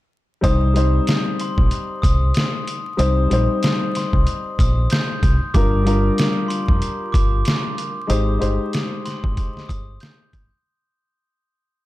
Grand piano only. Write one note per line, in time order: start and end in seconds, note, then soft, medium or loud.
0.41 0.72 G3 medium
0.41 0.72 C4 medium
0.41 0.73 D#4 medium
0.41 0.73 C5 loud
0.74 2.82 G3 medium
0.74 2.83 C4 medium
0.74 2.83 D#4 medium
0.74 2.84 C5 loud
2.97 3.28 G3 medium
2.97 3.28 C4 medium
2.97 3.29 D#4 medium
2.97 3.29 C5 loud
3.30 5.38 G3 medium
3.30 5.39 C4 medium
3.30 5.39 D#4 medium
3.30 5.39 C5 loud
5.54 5.83 G3 medium
5.54 5.84 D4 medium
5.54 5.85 F4 medium
5.54 5.85 A#4 loud
5.85 7.93 G3 medium
5.85 7.93 D4 medium
5.85 7.94 F4 medium
5.85 7.94 A#4 loud
8.07 8.37 G#3 medium
8.07 8.38 D#4 medium
8.07 8.39 G4 medium
8.07 8.39 C5 medium
8.38 10.47 G#3 medium
8.38 10.48 D#4 medium
8.38 10.48 G4 medium
8.38 10.49 C5 loud